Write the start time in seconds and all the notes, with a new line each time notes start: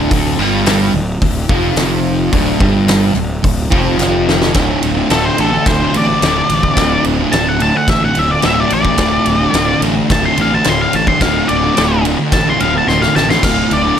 Already playing: D2 D3
0.11 D1 D2 D3, kick, open hi-hat
0.39 G1 G2 G3
0.66 snare, clap, open hi-hat
0.94 D1 D2
1.22 D1 D2, kick, open hi-hat
1.49 F1 F2 F3, kick
1.76 F1 F2 F3, snare, clap, open hi-hat
2.32 D1 D2 D3, kick, open hi-hat
2.60 G1 G2 G3, kick
2.88 snare, clap, open hi-hat
3.15 D1 D2, clap
3.43 D1 D2, kick, open hi-hat
3.70 F1 F2 F3, kick
3.98 F1 F2 F3, snare, clap
4.29 snare
4.42 snare
4.53 D1 D2 A2 D3, kick, snare, ride
4.83 D1, ride
4.94 A2 D3
5.10 D1 D2 A2 D3 A4, snare, ride
5.25 C5
5.37 A1 D2 A2 D3 A4, ride
5.52 muted distorted electric guitar stroke
5.66 D1 C5, kick, snare, ride
5.80 A2 D3
5.93 A1 D2 A2, ride
5.97 D3 D5
6.08 muted distorted electric guitar stroke
6.21 D1 D2 A2, snare, ride
6.25 D3
6.50 A1, ride
6.62 A2 D3, kick
6.76 D1 D2 A2 D3, kick, snare, ride
7.04 D1, ride
7.18 A2 D3
7.32 D1 D2 A2 A5, snare, ride
7.36 D3
7.49 F#5
7.59 D2 A2 D3 A5, ride
7.75 F#5, muted distorted electric guitar stroke
7.88 A1 E5, kick, snare, ride
8.00 A2 D3
8.05 F#5
8.14 D2 A2 D3, ride
8.18 D1 E5
8.29 D5, muted distorted electric guitar stroke
8.41 D1 D2 A2 D3, snare, ride
8.46 E5
8.60 D5
8.70 A1 D5, ride
8.83 A2 D3, kick
8.96 D1 D2 A2 D3, kick, snare, ride
9.26 D1, ride
9.38 A2 D3
9.52 D1 D2 A2 D3, snare, ride
9.79 A1 D2 A2 D3, ride
9.96 muted distorted electric guitar stroke
10.10 D1 A5, kick, snare, ride
10.22 A2 D3 C6
10.37 A1 D2 A2, ride
10.41 D3 F5
10.52 A5, muted distorted electric guitar stroke
10.64 D1 D2 A2, snare, ride
10.68 D3 C6
10.81 F5
10.93 A1 A5, ride
11.07 D3 C6, kick
11.11 A2
11.21 D1 D2 A2 D3 F5, kick, snare, ride
11.48 D1 D5, ride
11.62 A2 D3
11.75 D1 D2 A2 D3, snare, ride
12.03 D2 A2, ride
12.07 D3
12.18 muted distorted electric guitar stroke
12.32 A1 A5, kick, snare, ride
12.45 A2 D3 C6
12.60 D1 D2 A2 F5, ride
12.64 D3
12.74 A5, muted distorted electric guitar stroke
12.87 D1 D2 A2 D3 C6, snare
13.02 F5, snare
13.15 A1 A5, snare
13.28 A2 D3 C6, snare
13.43 D1 D2 A2 F5, kick, snare, splash, crash
13.47 D3
13.71 D1 D5, ride
13.84 D3
13.88 A2